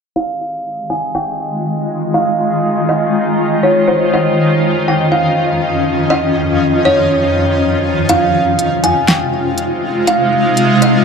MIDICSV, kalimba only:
0, 0, Header, 1, 2, 480
1, 0, Start_track
1, 0, Key_signature, -4, "minor"
1, 0, Tempo, 495868
1, 152, Time_signature, 4, 2, 24, 8
1, 10692, End_track
2, 0, Start_track
2, 0, Title_t, "Kalimba"
2, 0, Program_c, 0, 108
2, 155, Note_on_c, 0, 77, 108
2, 835, Note_off_c, 0, 77, 0
2, 871, Note_on_c, 0, 80, 82
2, 1099, Note_off_c, 0, 80, 0
2, 1112, Note_on_c, 0, 79, 82
2, 1563, Note_off_c, 0, 79, 0
2, 2073, Note_on_c, 0, 77, 85
2, 2754, Note_off_c, 0, 77, 0
2, 2796, Note_on_c, 0, 75, 81
2, 3475, Note_off_c, 0, 75, 0
2, 3515, Note_on_c, 0, 73, 81
2, 3742, Note_off_c, 0, 73, 0
2, 3751, Note_on_c, 0, 72, 80
2, 3979, Note_off_c, 0, 72, 0
2, 4004, Note_on_c, 0, 75, 96
2, 4679, Note_off_c, 0, 75, 0
2, 4725, Note_on_c, 0, 79, 81
2, 4947, Note_off_c, 0, 79, 0
2, 4954, Note_on_c, 0, 77, 76
2, 5404, Note_off_c, 0, 77, 0
2, 5907, Note_on_c, 0, 75, 109
2, 6590, Note_off_c, 0, 75, 0
2, 6633, Note_on_c, 0, 73, 89
2, 7794, Note_off_c, 0, 73, 0
2, 7835, Note_on_c, 0, 77, 113
2, 8515, Note_off_c, 0, 77, 0
2, 8554, Note_on_c, 0, 80, 88
2, 8781, Note_off_c, 0, 80, 0
2, 8792, Note_on_c, 0, 79, 85
2, 9243, Note_off_c, 0, 79, 0
2, 9753, Note_on_c, 0, 77, 94
2, 10434, Note_off_c, 0, 77, 0
2, 10475, Note_on_c, 0, 75, 84
2, 10692, Note_off_c, 0, 75, 0
2, 10692, End_track
0, 0, End_of_file